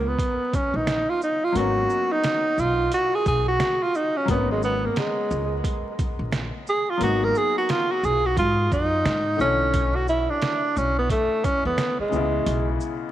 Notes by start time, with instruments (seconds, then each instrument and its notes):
Already playing: upright bass C#2, upright piano F#3 B3 C#4 A#4
0.08 tenor saxophone B3
0.19 kick, closed hi-hat
0.53 tenor saxophone C#4, kick, closed hi-hat, shaker
0.74 upright bass A#1, tenor saxophone D#4
0.87 snare, closed hi-hat
1.10 tenor saxophone F4
1.22 tenor saxophone D#4, shaker
1.44 tenor saxophone F4
1.52 upright bass G#1, upright piano F#3 A#3, closed hi-hat
1.57 upright piano B3 C#4, tenor saxophone F#4
1.90 shaker
2.12 tenor saxophone D#4
2.24 snare, closed hi-hat
2.58 upright bass B1, tenor saxophone F4, shaker
2.92 tenor saxophone F#4, closed hi-hat
3.15 tenor saxophone G#4
3.26 upright bass B1, tenor saxophone G#4, kick, closed hi-hat, shaker
3.48 tenor saxophone F#4
3.60 snare, closed hi-hat
3.83 tenor saxophone F4
3.94 tenor saxophone D#4, shaker
4.17 tenor saxophone C#4
4.25 upright bass G#1, upright piano F#3 A#3, kick, closed hi-hat
4.30 upright piano B3 C#4, tenor saxophone B3
4.51 tenor saxophone G#3
4.62 tenor saxophone B3, shaker
4.85 tenor saxophone A#3
4.96 tenor saxophone G#3, snare, closed hi-hat
5.31 upright bass C#2, shaker
5.64 kick, closed hi-hat
5.99 kick, closed hi-hat, shaker
6.19 upright bass A#1
6.32 snare, closed hi-hat
6.67 tenor saxophone G#4, shaker
6.90 tenor saxophone F4
6.98 upright bass G#1, upright piano F#3 A#3, closed hi-hat
7.02 upright piano B3 D#4, tenor saxophone F#4
7.24 tenor saxophone A#4
7.35 tenor saxophone G#4, shaker
7.58 tenor saxophone F#4
7.69 tenor saxophone F4, snare, closed hi-hat
7.92 tenor saxophone F#4
8.03 upright bass B1, tenor saxophone G#4, shaker
8.26 tenor saxophone F#4
8.37 upright bass G#2, tenor saxophone F4, kick, closed hi-hat
8.72 upright bass F#2, tenor saxophone D#4, kick, shaker
9.05 upright bass G#2, snare, closed hi-hat
9.37 upright bass B1, upright piano D3 E3, shaker
9.41 upright piano A3 C#5, tenor saxophone C#4
9.74 kick, closed hi-hat
9.96 tenor saxophone F#4
10.08 tenor saxophone E4, shaker
10.30 tenor saxophone D4
10.42 snare, closed hi-hat
10.76 upright bass B1, tenor saxophone C#4, shaker
10.98 tenor saxophone B3
11.10 tenor saxophone A3, kick, closed hi-hat
11.44 tenor saxophone C#4, kick, closed hi-hat, shaker
11.65 upright bass E2, tenor saxophone B3
11.78 snare, closed hi-hat
11.99 tenor saxophone G#3, muted upright bass stroke
12.09 upright bass C#2, upright piano C#3 E3, shaker
12.14 upright piano C#3 B3 E4
12.46 upright bass B1, closed hi-hat
12.80 shaker